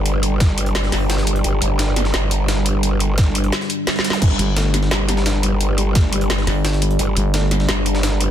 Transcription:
Already playing: wobble bass G1, ambient pad G3 D4 G4
0.06 closed hi-hat
0.23 closed hi-hat
0.40 kick, snare, closed hi-hat
0.58 closed hi-hat
0.66 closed hi-hat
0.75 wobble bass G1, snare, closed hi-hat
0.84 snare
0.92 wobble bass G1, snare, closed hi-hat, open hi-hat
1.10 snare, closed hi-hat
1.18 snare
1.27 closed hi-hat
1.36 closed hi-hat
1.44 wobble bass G1, closed hi-hat
1.62 wobble bass G1, closed hi-hat
1.79 snare, closed hi-hat
1.96 snare, closed hi-hat
2.05 snare
2.14 wobble bass G1, snare, closed hi-hat
2.31 closed hi-hat
2.48 snare, closed hi-hat
2.66 closed hi-hat
2.83 closed hi-hat
3.00 closed hi-hat
3.18 kick, snare, closed hi-hat
3.35 closed hi-hat
3.44 closed hi-hat
3.52 snare, closed hi-hat
3.61 snare
3.70 closed hi-hat
3.87 snare, closed hi-hat
3.96 snare
3.99 snare
4.04 snare, closed hi-hat
4.10 snare, zap
4.13 snare, closed hi-hat
4.22 wobble bass G1, ambient pad G4, kick, closed hi-hat, crash
4.39 fm bass G1, felt piano G3, closed hi-hat
4.57 felt piano A3, snare, closed hi-hat
4.74 felt piano G3, snare, closed hi-hat
4.83 snare
4.91 wobble bass G1, felt piano G3, snare, closed hi-hat
5.09 felt piano G3, snare, closed hi-hat
5.17 snare
5.26 felt piano D4, snare, closed hi-hat
5.43 felt piano G3, closed hi-hat
5.61 closed hi-hat
5.78 felt piano G3, closed hi-hat
5.95 felt piano A3, kick, snare, closed hi-hat
6.13 felt piano G3, closed hi-hat
6.21 closed hi-hat
6.30 wobble bass G1, felt piano G3, snare, closed hi-hat
6.39 snare
6.47 fm bass G1, felt piano G3, snare, closed hi-hat, open hi-hat
6.65 felt piano D4, snare, closed hi-hat
6.73 snare
6.82 felt piano G3, closed hi-hat
6.91 closed hi-hat
6.99 wobble bass G1, ambient pad A#4, closed hi-hat
7.17 fm bass G1, felt piano G3, closed hi-hat
7.34 felt piano A3, snare, closed hi-hat
7.51 felt piano G3, snare, closed hi-hat
7.60 snare
7.69 wobble bass G1, felt piano G3, snare, closed hi-hat
7.86 felt piano G3, closed hi-hat
7.95 snare
8.03 felt piano D4, snare, closed hi-hat
8.21 felt piano G3, closed hi-hat

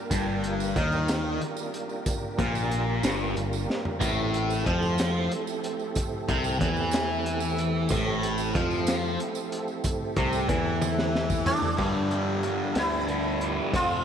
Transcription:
Already playing: tonewheel organ A#3 D4 F4 G4 A#4
0.11 picked electric bass G1, distorted electric guitar G2, kick, closed hi-hat, tambourine
0.44 closed hi-hat
0.60 tambourine
0.76 picked electric bass D#2, distorted electric guitar D#3, kick, closed hi-hat, tambourine
0.92 tambourine
1.08 snare, closed hi-hat, tambourine
1.41 closed hi-hat
1.57 tambourine
1.74 closed hi-hat, tambourine
1.89 tambourine
2.06 kick, closed hi-hat, tambourine
2.38 picked electric bass A#1, distorted electric guitar A#2, kick, closed hi-hat
2.55 tambourine
2.71 closed hi-hat, tambourine
3.03 picked electric bass G1, distorted electric guitar G2, snare, closed hi-hat, tambourine
3.21 tambourine
3.36 picked electric bass G1, distorted electric guitar G2, closed hi-hat, tambourine
3.53 tambourine
3.70 snare
3.85 floor tom
4.00 picked electric bass A1, distorted electric guitar A2, tonewheel organ A3 C4 E4 A4, kick, closed hi-hat, tambourine
4.34 closed hi-hat
4.50 tambourine
4.66 picked electric bass F2, distorted electric guitar F3, kick, closed hi-hat
4.82 tambourine
4.98 snare, closed hi-hat, tambourine
5.31 closed hi-hat
5.47 tambourine
5.63 closed hi-hat, tambourine
5.79 tambourine
5.95 kick, closed hi-hat, tambourine
6.28 picked electric bass C2, distorted electric guitar C3, kick, closed hi-hat
6.44 tambourine
6.60 picked electric bass E2, distorted electric guitar E3, kick, closed hi-hat, tambourine
6.76 tambourine
6.91 snare, closed hi-hat, tambourine
7.26 closed hi-hat
7.40 tambourine
7.57 closed hi-hat, tambourine
7.89 picked electric bass A1, distorted electric guitar A2, kick, closed hi-hat, tambourine
8.23 closed hi-hat
8.38 tambourine
8.54 picked electric bass F2, distorted electric guitar F3, kick, closed hi-hat, tambourine
8.71 tambourine
8.87 snare, closed hi-hat, tambourine
9.20 closed hi-hat
9.35 tambourine
9.52 closed hi-hat
9.68 tambourine
9.84 kick, closed hi-hat, tambourine
10.16 picked electric bass C2, distorted electric guitar C3, kick, closed hi-hat
10.33 tambourine
10.49 picked electric bass E2, distorted electric guitar E3, kick, closed hi-hat
10.82 high tom, tambourine
10.99 snare
11.15 snare
11.30 kick, tambourine
11.46 sitar D4, floor tom, tambourine
11.62 floor tom, tambourine
11.77 distorted electric guitar G2 D3 G3, picked electric bass G2, tonewheel organ F3 D4 G4 A#4, kick, crash
12.11 distorted electric guitar D3 G3, closed hi-hat
12.43 distorted electric guitar G2 D3, closed hi-hat
12.48 distorted electric guitar G3
12.75 picked electric bass D2, distorted electric guitar G2 D3 G3, sitar E4, snare, closed hi-hat
13.08 distorted electric guitar G2 D3 G3, closed hi-hat
13.41 closed hi-hat
13.72 distorted electric guitar F2 C3 F3, picked electric bass F2, sitar F4, tonewheel organ A4 C5, kick, closed hi-hat

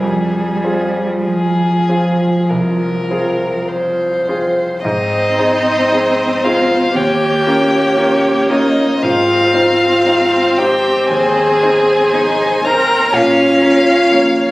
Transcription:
0.00 grand piano F2, cello G3, viola F4, violin G#4
0.64 grand piano C4 F4 G#4
1.24 cello F3, violin G#4
1.89 grand piano C4 F4 G#4
2.50 grand piano C2, violin A#4
3.11 grand piano C4 F4 G#4
3.69 violin C5
4.28 grand piano C4 F4 G#4
4.83 grand piano G#2, cello C4, viola D#4, violin C5 D#5
5.39 grand piano C4 D#4 G#4
5.91 grand piano C4 D#4 G#4
6.44 grand piano C4 D#4 G#4, viola F4, violin F5
6.93 grand piano D#2, cello A#3, viola G4, violin C#5 G5
7.46 grand piano C#4 F4 A#4
7.96 cello A#3, grand piano C#4 F4 A#4
8.49 grand piano C#4 F4 A#4, viola D#4, violin D#5
9.00 grand piano G#2, cello C4, viola F4, violin C5 F5
9.55 grand piano C4 D#4 C5
10.06 grand piano C4 D#4 C5
10.58 grand piano C4 D#4 C5, viola G4, violin G5
11.10 grand piano D#2, viola G#4, violin G#5
11.63 grand piano C4 D#4 C5
12.13 grand piano C4 D#4 C5, cello D#4
12.64 grand piano C4 D#4 C5, cello C4, viola A#4, violin A#5
13.12 grand piano A#2, cello C#4, viola F4, violin C#5 F5
13.61 grand piano A#3 C#4 C#5
14.12 grand piano A#3 C#4 C#5, cello A#3

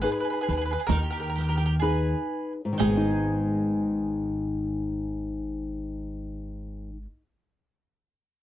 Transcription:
0.02 nylon-string guitar D#4 G#4 B4, mandolin G#4 B4
0.12 mandolin G#4 B4
0.20 mandolin B4
0.25 mandolin G#4
0.30 mandolin G#4 B4
0.41 mandolin G#4 B4
0.48 upright bass D#2, mandolin B4, riq
0.53 mandolin G#4
0.57 mandolin G#4 B4
0.65 mandolin B4
0.71 mandolin G#4 B4
0.80 mandolin G#4
0.87 upright bass D#2, nylon-string guitar D#3, mandolin A#4, riq
0.91 mandolin D#4
0.99 mandolin A#4
1.03 mandolin G4
1.10 mandolin G4 A#4
1.20 mandolin G4 A#4
1.29 mandolin A#4
1.36 mandolin G4, riq
1.41 mandolin G4 A#4
1.48 mandolin G4 A#4
1.57 mandolin G4 A#4
1.66 mandolin G4 A#4
1.79 nylon-string guitar D#4 G#4 B4, mandolin G#4 B4
2.65 nylon-string guitar G#2
2.73 nylon-string guitar D#3
2.78 upright bass G#1, nylon-string guitar G#3, mandolin D#4 G#4, riq
2.89 nylon-string guitar B3
2.97 nylon-string guitar D#4

